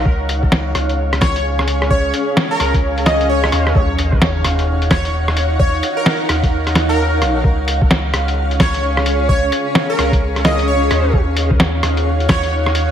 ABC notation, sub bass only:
X:1
M:4/4
L:1/8
Q:"Swing 16ths" 1/4=130
K:Ebm
V:1 name="Sub bass" clef=bass
D,,3 D,,4- D,,- | D,, z2 D,,4 E,, | E,,3 E,,4- E,,- | E,, z2 E,,4 B,,, |
D,,3 D,,4- D,,- | D,, z2 D,,4 E,, | E,,3 E,,4- E,, |]